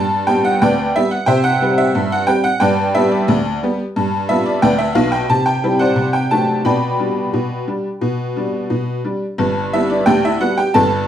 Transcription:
0.00 0.23 G2 medium
0.00 0.27 A5 medium
0.27 0.46 G3 soft
0.27 0.46 B3 soft
0.27 0.46 G4 medium
0.27 0.44 G5 medium
0.45 0.62 F#5 medium
0.62 0.90 D2 medium
0.62 0.94 B4 medium
0.62 0.93 D5 medium
0.62 0.95 G5 medium
0.96 1.14 G3 soft
0.96 1.15 B3 soft
0.96 1.15 G4 medium
0.96 1.12 E5 medium
1.11 1.28 F#5 medium
1.26 1.56 C3 medium
1.26 1.44 C5 medium
1.26 1.44 E5 medium
1.26 1.44 G5 medium
1.44 1.78 F#5 medium
1.62 1.80 G3 soft
1.62 1.80 C4 soft
1.62 1.81 G4 medium
1.78 2.12 E5 medium
1.95 2.24 G2 medium
2.12 2.29 F#5 medium
2.27 2.47 G3 soft
2.27 2.47 C4 soft
2.27 2.47 G4 medium
2.27 2.45 G5 loud
2.44 2.62 F#5 loud
2.60 2.90 G2 medium
2.60 2.93 B4 medium
2.60 2.93 D5 medium
2.60 2.95 G5 loud
2.95 3.14 G3 medium
2.95 3.14 B3 medium
2.95 3.15 G4 medium
2.95 3.12 E5 medium
3.11 3.62 D5 medium
3.28 3.57 D2 medium
3.63 3.81 G3 soft
3.63 3.82 B3 medium
3.63 3.82 G4 medium
3.96 4.25 G2 medium
4.29 4.48 G3 medium
4.29 4.48 B3 soft
4.29 4.49 F4 medium
4.29 4.46 E5 medium
4.46 4.62 D5 medium
4.62 4.92 D2 medium
4.62 4.79 B4 medium
4.62 4.79 D5 medium
4.62 4.80 G5 loud
4.78 4.96 E5 medium
4.95 5.23 B1 medium
4.95 5.23 B2 medium
4.95 5.13 F5 medium
5.12 5.30 G5 medium
5.30 5.59 C3 medium
5.30 5.47 A5 medium
5.46 5.80 G5 medium
5.64 5.82 G3 soft
5.64 5.83 C4 soft
5.64 5.83 E4 medium
5.79 6.12 C5 medium
5.79 6.12 D5 medium
5.79 6.14 F#5 medium
5.96 6.26 C3 medium
6.13 6.31 G5 medium
6.31 6.50 F#3 soft
6.31 6.51 A3 soft
6.31 6.51 D4 soft
6.31 6.66 A5 medium
6.65 6.95 B2 medium
6.65 9.01 D5 medium
6.65 9.01 G5 medium
6.65 9.04 B5 medium
6.99 7.18 G3 soft
6.99 7.18 D4 soft
7.33 7.63 B2 medium
7.68 7.87 G3 soft
7.68 7.87 D4 soft
8.01 8.31 B2 medium
8.36 8.55 G3 soft
8.36 8.55 D4 soft
8.70 8.99 B2 medium
9.05 9.23 G3 soft
9.05 9.23 D4 soft
9.38 9.67 G1 medium
9.38 9.68 G2 medium
9.73 9.92 G3 soft
9.73 9.92 B3 soft
9.73 9.89 E4 medium
9.73 9.90 E5 medium
9.90 10.06 D4 soft
9.90 10.07 D5 medium
10.06 10.35 D2 medium
10.06 10.35 D3 medium
10.06 10.23 G4 medium
10.06 10.23 G5 loud
10.25 10.40 E4 medium
10.25 10.41 E5 medium
10.40 10.59 G3 soft
10.40 10.59 B3 soft
10.40 10.57 F#4 medium
10.40 10.57 F#5 medium
10.58 10.74 G4 medium
10.58 10.74 G5 medium
10.74 11.03 G1 medium
10.74 11.03 G2 medium
10.74 11.06 A4 medium
10.74 11.07 A5 loud

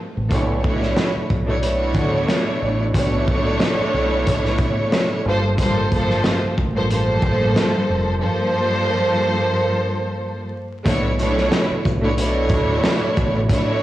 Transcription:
0.17 0.31 A1 loud
0.30 0.93 B1 loud
0.30 0.61 B2 loud
0.30 0.61 A3 medium
0.30 0.62 D4 medium
0.30 0.62 E4 medium
0.30 0.63 C#5 loud
0.30 kick loud
0.30 closed hi-hat loud
0.63 1.25 B2 medium
0.63 1.25 A3 medium
0.63 1.26 D4 medium
0.63 1.26 E4 medium
0.63 1.26 C#5 loud
0.63 kick medium
0.82 snare soft
0.96 snare loud
0.96 closed hi-hat medium
1.16 muted fingered electric bass stroke soft
1.30 1.95 B1 medium
1.30 kick medium
1.46 1.59 B2 medium
1.46 1.59 A3 medium
1.46 1.60 D4 medium
1.46 1.61 E4 medium
1.46 1.62 C#5 loud
1.60 2.84 B2 loud
1.60 2.84 A3 medium
1.60 2.85 D4 medium
1.60 2.85 E4 medium
1.60 2.86 C#5 loud
1.60 closed hi-hat loud
1.94 2.25 D2 medium
1.94 kick loud
1.94 closed hi-hat medium
2.28 snare loud
2.28 snare medium
2.28 closed hi-hat medium
2.62 2.92 A1 medium
2.93 3.57 B1 loud
2.93 5.22 B2 loud
2.93 5.22 A3 loud
2.93 5.22 D4 loud
2.93 5.23 E4 medium
2.93 5.23 C#5 loud
2.93 kick loud
2.93 closed hi-hat loud
3.28 kick medium
3.60 snare loud
3.60 closed hi-hat medium
3.80 muted fingered electric bass stroke soft
3.94 4.24 B1 medium
4.27 4.57 B1 medium
4.27 kick medium
4.27 closed hi-hat loud
4.45 snare soft
4.58 kick loud
4.58 closed hi-hat medium
4.92 snare loud
4.92 snare medium
4.92 closed hi-hat medium
5.26 6.20 G1 loud
5.26 5.47 G2 loud
5.26 5.48 F3 medium
5.26 5.48 A#3 medium
5.26 5.48 A4 medium
5.26 5.49 C5 loud
5.57 5.88 G2 loud
5.57 5.89 F3 medium
5.57 5.89 A#3 medium
5.57 5.89 A4 medium
5.57 5.90 C5 loud
5.57 kick loud
5.57 closed hi-hat loud
5.90 6.52 G2 loud
5.90 6.52 F3 medium
5.90 6.53 A#3 medium
5.90 6.53 A4 medium
5.90 6.53 C5 loud
5.90 kick medium
5.90 closed hi-hat medium
6.10 snare soft
6.24 snare loud
6.24 closed hi-hat medium
6.43 muted fingered electric bass stroke soft
6.58 7.20 A1 loud
6.58 kick medium
6.75 6.88 G2 medium
6.75 6.88 F3 medium
6.75 6.89 A#3 medium
6.75 6.90 A4 medium
6.75 6.90 C5 loud
6.89 8.12 G2 loud
6.89 8.13 F3 medium
6.89 8.13 A#3 medium
6.89 8.13 A4 loud
6.89 8.14 C5 loud
6.89 closed hi-hat loud
7.22 7.53 A1 medium
7.22 kick loud
7.56 snare loud
7.56 snare medium
7.56 closed hi-hat medium
7.89 8.19 F1 medium
8.19 10.49 G2 loud
8.19 10.49 F3 loud
8.19 10.49 A#3 loud
8.19 10.50 A4 medium
8.19 10.50 C5 loud
10.85 11.48 B1 loud
10.85 11.16 B2 loud
10.85 11.16 A3 medium
10.85 11.17 D4 medium
10.85 11.17 E4 medium
10.85 11.18 C#5 loud
10.85 kick loud
10.85 closed hi-hat loud
11.18 11.80 B2 medium
11.18 11.80 A3 loud
11.18 11.80 D4 medium
11.18 11.81 E4 medium
11.18 11.81 C#5 loud
11.18 closed hi-hat medium
11.18 shaker medium
11.38 snare soft
11.52 snare loud
11.52 closed hi-hat medium
11.71 muted fingered electric bass stroke soft
11.85 12.50 B1 loud
11.85 kick medium
11.85 shaker medium
12.01 12.14 B2 medium
12.01 12.14 A3 medium
12.01 12.15 D4 medium
12.01 12.16 E4 medium
12.01 12.16 C#5 loud
12.15 13.39 B2 loud
12.15 13.39 A3 loud
12.15 13.40 D4 medium
12.15 13.40 E4 loud
12.15 13.40 C#5 loud
12.15 closed hi-hat loud
12.49 12.80 D2 medium
12.49 kick loud
12.49 closed hi-hat medium
12.49 shaker medium
12.84 snare loud
12.84 snare medium
12.84 closed hi-hat medium
13.17 13.47 A1 medium
13.17 kick loud
13.17 shaker medium
13.48 13.83 B2 loud
13.48 13.83 A3 loud
13.48 13.83 D4 loud
13.48 13.83 E4 medium
13.48 13.83 C#5 loud
13.48 kick loud
13.48 closed hi-hat loud

